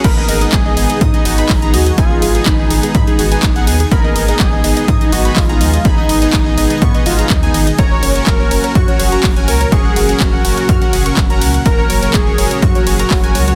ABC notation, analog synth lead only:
X:1
M:4/4
L:1/16
Q:1/4=124
K:G#dor
V:1 name="Analog synth lead"
A4 G4 D6 F2 | E4 D8- D2 z2 | A4 G4 D2 F2 E4 | D8 B,2 E2 D3 z |
c4 A4 F6 A2 | G4 F8- F2 z2 | A4 G4 F8 |]